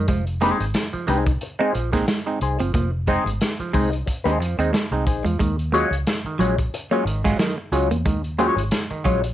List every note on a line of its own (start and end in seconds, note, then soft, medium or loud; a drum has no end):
0.08 0.51 F1 loud
0.08 0.25 F3 medium
0.08 0.21 G#3 medium
0.08 kick loud
0.08 closed hi-hat medium
0.27 closed hi-hat soft
0.41 0.57 G#3 loud
0.41 0.54 A#3 medium
0.41 0.58 C4 medium
0.41 0.58 D#4 loud
0.41 0.63 D#4 medium
0.41 0.64 G#4 medium
0.41 0.64 C5 medium
0.41 closed hi-hat medium
0.60 0.72 G#1 medium
0.60 0.66 C4 soft
0.60 0.66 D#4 soft
0.60 muted clean electric guitar stroke soft
0.60 closed hi-hat medium
0.74 0.82 C4 soft
0.74 0.82 D#4 soft
0.74 snare loud
0.74 closed hi-hat medium
0.93 1.06 F3 medium
0.93 muted fingered electric bass stroke soft
0.93 muted clean electric guitar stroke medium
0.93 closed hi-hat soft
1.07 1.36 C2 medium
1.07 1.24 G#3 medium
1.07 1.21 G#3 medium
1.07 1.24 C4 medium
1.07 1.24 D#4 medium
1.07 1.30 D#4 medium
1.07 1.27 G#4 medium
1.07 1.26 C5 medium
1.07 closed hi-hat medium
1.26 muted clean electric guitar stroke soft
1.26 kick loud
1.26 closed hi-hat medium
1.41 muted clean electric guitar stroke soft
1.41 closed hi-hat medium
1.59 1.72 G#3 medium
1.59 1.72 C4 medium
1.59 1.70 C4 medium
1.59 1.72 D#4 medium
1.59 1.74 D#4 medium
1.59 1.75 G#4 medium
1.59 1.75 C5 medium
1.74 2.02 A#1 medium
1.74 1.90 F3 medium
1.74 muted clean electric guitar stroke soft
1.74 closed hi-hat medium
1.92 2.05 G#3 medium
1.92 2.03 A#3 medium
1.92 2.06 C4 medium
1.92 2.06 D#4 medium
1.92 muted clean electric guitar stroke soft
1.92 kick medium
1.92 snare soft
1.92 closed hi-hat medium
2.08 2.20 G#3 medium
2.08 muted clean electric guitar stroke soft
2.08 snare loud
2.08 closed hi-hat medium
2.26 2.39 G#3 medium
2.26 2.39 C4 medium
2.26 2.39 D#4 medium
2.26 muted clean electric guitar stroke soft
2.41 2.57 C2 loud
2.41 2.58 D#4 medium
2.41 2.58 G#4 medium
2.41 2.58 C5 medium
2.41 closed hi-hat medium
2.59 2.72 F#1 medium
2.59 2.72 F3 medium
2.59 2.70 C4 medium
2.59 muted clean electric guitar stroke medium
2.59 closed hi-hat medium
2.74 3.17 F1 loud
2.74 2.91 F3 medium
2.74 2.87 A#3 medium
2.74 kick loud
2.74 closed hi-hat medium
3.07 3.24 G#3 medium
3.07 3.20 G#3 medium
3.07 3.24 C4 medium
3.07 3.28 D#4 medium
3.07 3.24 D#4 loud
3.07 3.28 G#4 medium
3.07 3.29 C5 medium
3.07 kick medium
3.07 closed hi-hat medium
3.26 3.38 G#1 medium
3.26 3.32 C4 soft
3.26 3.32 D#4 soft
3.26 muted clean electric guitar stroke soft
3.26 closed hi-hat medium
3.41 3.49 C4 soft
3.41 3.48 D#4 soft
3.41 snare loud
3.41 closed hi-hat medium
3.59 3.72 F3 medium
3.59 muted clean electric guitar stroke soft
3.59 muted fingered electric bass stroke soft
3.59 closed hi-hat soft
3.73 4.01 C2 medium
3.73 3.86 G#3 medium
3.73 3.90 G#3 medium
3.73 3.90 C4 medium
3.73 3.94 D#4 medium
3.73 3.90 D#4 medium
3.73 3.91 G#4 medium
3.73 3.91 C5 medium
3.73 kick loud
3.73 open hi-hat medium
3.92 muted clean electric guitar stroke soft
3.92 closed hi-hat medium
4.06 muted clean electric guitar stroke soft
4.06 kick medium
4.06 closed hi-hat medium
4.24 4.40 D#2 medium
4.24 4.38 G#3 medium
4.24 4.35 A#3 medium
4.24 4.39 C4 medium
4.24 4.39 D#4 medium
4.24 4.39 G#4 medium
4.24 4.40 C5 medium
4.24 closed hi-hat soft
4.40 4.55 F2 medium
4.40 4.56 F3 medium
4.40 muted clean electric guitar stroke soft
4.40 closed hi-hat medium
4.58 4.71 D#2 medium
4.58 4.72 G#3 medium
4.58 4.69 C4 medium
4.58 4.72 C4 medium
4.58 4.72 D#4 medium
4.58 muted clean electric guitar stroke soft
4.58 closed hi-hat medium
4.72 4.86 G#3 medium
4.72 muted clean electric guitar stroke soft
4.72 snare loud
4.72 closed hi-hat medium
4.91 5.06 C2 medium
4.91 5.05 G#3 medium
4.91 5.05 C4 medium
4.91 5.05 D#4 medium
4.91 muted clean electric guitar stroke soft
5.06 5.22 A#1 medium
5.06 5.23 D#4 medium
5.06 5.23 G#4 medium
5.06 5.23 C5 medium
5.06 kick medium
5.06 closed hi-hat medium
5.24 5.37 E2 medium
5.24 5.38 F3 medium
5.24 5.34 G#3 medium
5.24 closed hi-hat medium
5.39 5.83 D#2 loud
5.39 5.56 D#3 medium
5.39 5.52 G#3 loud
5.39 kick loud
5.39 closed hi-hat medium
5.59 closed hi-hat soft
5.72 5.89 F#3 loud
5.72 5.89 G#3 medium
5.72 5.85 A#3 medium
5.72 5.90 C#4 medium
5.72 5.90 F4 loud
5.72 5.94 F#4 medium
5.72 5.94 G#4 medium
5.72 5.94 C#5 loud
5.72 closed hi-hat medium
5.91 6.03 C#2 medium
5.91 5.98 C#4 soft
5.91 5.98 F4 soft
5.91 muted clean electric guitar stroke medium
5.91 closed hi-hat medium
6.07 6.14 C#4 soft
6.07 6.14 F4 soft
6.07 snare loud
6.07 closed hi-hat medium
6.24 6.38 D#3 medium
6.24 muted fingered electric bass stroke soft
6.24 muted clean electric guitar stroke soft
6.39 6.67 A#1 medium
6.39 6.52 F#3 medium
6.39 6.56 F#3 medium
6.39 6.56 G#3 medium
6.39 6.56 C#4 medium
6.39 6.56 F4 medium
6.39 6.60 F#4 medium
6.39 6.58 G#4 medium
6.39 6.57 C#5 medium
6.39 closed hi-hat medium
6.59 muted clean electric guitar stroke soft
6.59 kick loud
6.59 closed hi-hat medium
6.74 muted clean electric guitar stroke soft
6.74 closed hi-hat medium
6.91 7.04 F#3 medium
6.91 7.04 G#3 medium
6.91 7.01 A#3 medium
6.91 7.04 C#4 medium
6.91 7.04 F4 medium
6.91 7.05 F#4 medium
6.91 7.05 G#4 medium
6.91 7.06 C#5 medium
7.05 7.33 G#1 medium
7.05 7.22 D#3 medium
7.05 muted clean electric guitar stroke soft
7.05 closed hi-hat medium
7.24 7.37 F#3 medium
7.24 7.34 G#3 medium
7.24 7.37 G#3 medium
7.24 7.37 C#4 medium
7.24 7.37 F4 medium
7.24 muted clean electric guitar stroke soft
7.24 kick medium
7.24 snare soft
7.24 closed hi-hat medium
7.39 7.55 D#3 medium
7.39 7.51 F#3 medium
7.39 muted clean electric guitar stroke soft
7.39 snare loud
7.39 closed hi-hat medium
7.58 muted clean electric guitar stroke soft
7.72 7.87 C#2 medium
7.72 7.88 F#3 medium
7.72 7.88 G#3 medium
7.72 7.88 C#4 medium
7.72 7.88 F4 medium
7.72 7.89 F#4 medium
7.72 7.89 G#4 medium
7.72 7.89 C#5 medium
7.72 closed hi-hat medium
7.90 8.06 E2 medium
7.90 8.01 A#3 medium
7.90 7.97 C#4 soft
7.90 7.97 F4 soft
7.90 muted clean electric guitar stroke soft
7.90 closed hi-hat medium
8.06 8.49 D#2 loud
8.06 8.22 D#3 medium
8.06 8.18 G#3 medium
8.06 kick loud
8.06 closed hi-hat medium
8.24 closed hi-hat soft
8.38 8.55 F#3 loud
8.38 8.55 G#3 medium
8.38 8.51 A#3 medium
8.38 8.55 C#4 medium
8.38 8.55 F4 loud
8.38 8.60 F#4 medium
8.38 8.60 G#4 medium
8.38 8.61 C#5 loud
8.38 closed hi-hat medium
8.56 8.69 G#1 medium
8.56 8.63 C#4 soft
8.56 8.63 F4 soft
8.56 muted clean electric guitar stroke soft
8.56 closed hi-hat medium
8.71 8.79 C#4 soft
8.71 8.80 F4 soft
8.71 snare loud
8.71 closed hi-hat medium
8.90 9.03 D#3 medium
8.90 muted fingered electric bass stroke soft
8.90 muted clean electric guitar stroke medium
8.90 closed hi-hat soft
9.04 9.32 A#1 medium
9.04 9.21 F#3 medium
9.04 9.18 F#3 medium
9.04 9.21 G#3 medium
9.04 9.21 C#4 medium
9.04 9.21 F4 medium
9.04 9.25 F#4 medium
9.04 9.24 G#4 medium
9.04 9.23 C#5 medium
9.04 kick medium
9.04 closed hi-hat medium
9.24 muted clean electric guitar stroke soft
9.24 closed hi-hat medium